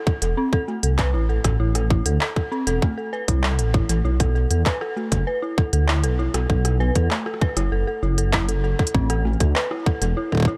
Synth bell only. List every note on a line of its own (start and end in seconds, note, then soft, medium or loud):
0.07 0.12 A4 medium
0.22 0.31 A4 medium
0.37 0.50 C4 medium
0.53 0.61 A4 loud
0.68 0.73 A3 medium
0.83 0.88 A4 medium
0.99 1.07 B4 loud
1.14 1.23 E4 medium
1.29 1.42 A4 medium
1.44 1.50 A4 medium
1.60 1.68 E4 medium
1.75 1.80 A4 medium
1.90 1.96 E4 medium
2.06 2.19 A4 medium
2.21 2.26 A4 medium
2.36 2.45 A4 medium
2.52 2.65 C4 loud
2.67 2.76 A4 loud
2.82 2.87 A3 medium
2.98 3.03 A4 medium
3.13 3.22 B4 loud
3.28 3.37 E4 medium
3.43 3.57 A4 medium
3.59 3.64 A4 medium
3.74 3.83 E4 medium
3.89 3.95 A4 medium
4.05 4.10 E4 medium
4.20 4.33 A4 medium
4.35 4.41 A4 medium
4.51 4.59 A4 medium
4.66 4.79 B4 loud
4.81 4.90 A4 loud
4.96 5.02 A3 medium
5.12 5.17 A4 medium
5.27 5.36 B4 loud
5.42 5.51 E4 medium
5.58 5.71 A4 medium
5.73 5.78 A4 medium
5.88 5.97 E4 medium
6.04 6.09 A4 medium
6.19 6.24 E4 medium
6.34 6.47 A4 medium
6.50 6.55 A4 medium
6.65 6.74 A4 medium
6.80 6.93 B4 loud
6.95 7.04 A4 loud
7.11 7.16 A3 medium
7.26 7.31 A4 medium
7.41 7.50 B4 loud
7.57 7.65 E4 medium
7.72 7.85 A4 medium
7.87 7.93 A4 medium
8.03 8.11 E4 medium
8.18 8.23 A4 medium
8.33 8.38 E4 medium
8.49 8.62 A4 medium
8.64 8.69 A4 medium
8.79 8.88 A4 medium
8.94 9.08 C4 loud
9.10 9.19 A4 loud
9.25 9.30 A3 medium
9.40 9.46 A4 medium
9.56 9.64 B4 loud
9.71 9.80 E4 medium
9.86 9.99 A4 medium
10.02 10.07 A4 medium
10.17 10.26 E4 medium
10.32 10.37 A4 medium
10.48 10.53 E4 medium